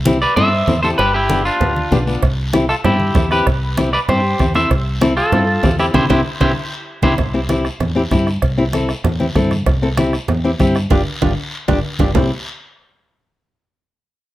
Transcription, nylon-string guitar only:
0.06 C4 E4 G4
0.37 C4 E4 A4
0.68 C4 E4 A4
0.83 C4 E4 G4
1.30 B3 D4 G4
1.61 B3 D4 G4
1.91 B3 D4 G4
2.07 B3 D4 F4
2.53 C4 E4 G4
2.84 C4 E4 G4
3.15 C4 E4 A4
3.31 C4 E4 G4
3.78 C4 E4 G4
4.09 C4 E4 G4
4.39 C4 E4 G4
4.55 C4 E4 A4
5.01 C4 E4 A4
5.32 C4 E4 A4
5.63 C4 E4 G4
5.79 C4 E4 G4
5.94 C4 E4 G4
6.10 C4 E4 G4
6.40 C4 E4 G4
7.03 C4 E4 G4
7.34 C4 E4 G4
7.49 C4 E4 G4
7.95 C4 E4 G4
8.11 C4 E4 G4
8.58 C4 E4 G4
8.74 C4 E4 A4
9.20 C4 E4 G4
9.35 C4 E4 A4
9.82 C4 E4 A4
9.98 C4 E4 G4
10.44 C4 E4 G4
10.60 C4 E4 G4
10.91 D4 F4 G4
11.22 D4 F4 G4
11.68 D4 F4 G4
12.00 D4 F4 G4
12.16 C4 E4 G4

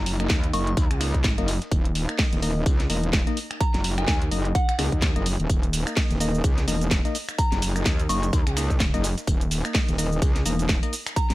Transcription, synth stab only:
0.20 A#3 D#4 D#5
0.53 A#3 D#4 D#5
1.01 A#3 D#4 D#5
1.38 A#3 D#4 D#5
2.09 A#3 D#4 D#5
2.42 A#3 D#4 D#5
2.90 A#3 D#4 D#5
3.27 A#3 D#4 D#5
3.98 A#3 D#4 D#5
4.31 A#3 D#4 D#5
4.79 A#3 D#4 D#5
5.16 A#3 D#4 D#5
5.87 A#3 D#4 D#5
6.20 A#3 D#4 D#5
6.68 A#3 D#4 D#5
7.05 A#3 D#4 D#5
7.76 A#3 D#4 D#5
8.09 A#3 D#4 D#5
8.57 A#3 D#4 D#5
8.94 A#3 D#4 D#5
9.65 A#3 D#4 D#5
9.98 A#3 D#4 D#5
10.46 A#3 D#4 D#5
10.83 A#3 D#4 D#5

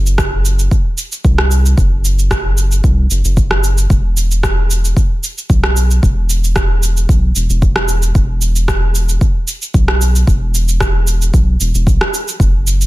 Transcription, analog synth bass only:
Already playing: F#1
1.25 C2
1.77 F#1
2.84 C2
3.11 F#1
3.25 F#1
3.90 E1
5.50 B1
6.03 E1
7.09 B1
7.36 E1
7.50 E1
8.15 E1
9.74 B1
10.27 E1
11.34 B1
11.60 E1
11.75 E1
11.87 B1
12.40 F#1

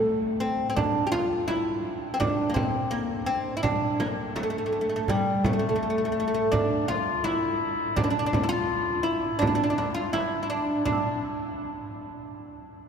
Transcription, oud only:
Already playing: A3
0.40 C4
0.70 C4
0.76 D4
1.07 G4
1.12 F4
1.48 E4
2.14 C4
2.20 D4
2.50 A#3
2.54 C4
2.91 A#3
3.26 C4
3.57 E4
3.63 D4
4.00 A#3
4.36 A3
4.43 A3
4.50 A3
4.58 A3
4.66 A3
4.73 A3
4.81 A3
4.89 A3
4.96 A3
5.09 G3
5.46 A3
5.53 A3
5.59 A3
5.69 A3
5.76 A3
5.83 A3
5.90 A3
5.98 A3
6.05 A3
6.12 A3
6.20 A3
6.28 A3
6.34 A3
6.52 D4
6.88 F4
7.24 E4
7.96 D4
8.04 D4
8.10 D4
8.19 D4
8.26 D4
8.34 D4
8.43 E4
8.49 F4
9.03 E4
9.39 D4
9.47 D4
9.55 D4
9.64 D4
9.70 D4
9.78 D4
9.94 F4
10.13 E4
10.43 E4
10.50 D4
10.85 D4

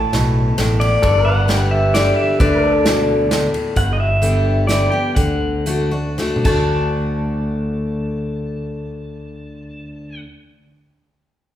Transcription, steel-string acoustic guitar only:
Already playing: A2
0.13 B2
0.58 A2
1.03 G2
1.48 D3 G3 B3 G4
1.95 D3 G3 B3 G4
2.41 D3
2.86 B2
3.31 A2
3.76 G2
4.22 D3 G3 B3 G4
4.68 D3 G3 B3 G4
4.92 B3 G4
5.17 D3
5.66 D3 A3 D4 F#4
5.91 D4 F#4
6.18 D3 A3 D4 F#4
6.45 D3 A3 D4 F#4

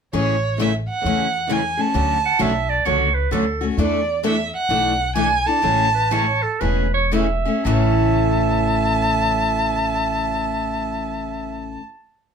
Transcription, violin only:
0.15 C#5
0.61 E5
0.89 F#5
1.52 G#5
1.81 A5
3.80 D5
4.26 E5
4.54 F#5
5.16 G#5
5.47 A5
7.66 A5

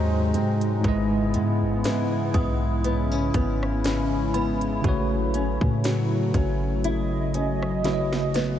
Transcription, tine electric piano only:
Already playing: G#2 G#3 F#4 C5 D#5
0.81 G#2 G#3 E4
0.87 B4 D#5
4.82 C#3 A3 F#4
4.87 B4 C#5
7.83 C#3 A3 F#4 B4 C#5
7.93 D#5

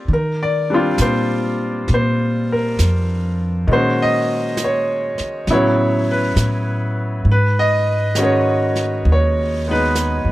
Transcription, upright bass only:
0.08 D#3
0.99 A#2
1.89 A#2
2.79 F2
3.68 A#2
5.20 muted upright bass stroke
5.48 A2
6.36 A2
7.25 G#2
9.05 D#2
10.25 F#2

